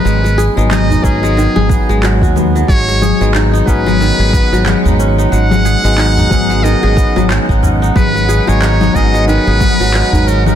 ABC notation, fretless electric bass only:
X:1
M:4/4
L:1/16
Q:"Swing 16ths" 1/4=91
K:G#m
V:1 name="Fretless electric bass" clef=bass
G,,,2 z G,,,2 z G,,,2 z G,,, z G,,,2 D,,2 z | G,,,2 z G,,,2 z G,,,2 z G,,, z G,,, z G,,,2 z | G,,,2 z G,,,2 z G,,,2 z G,,, z G,,, z G,,,2 z | G,,,2 z G,,,2 z G,,,2 z G,,, z G,,, z G,,,2 z |]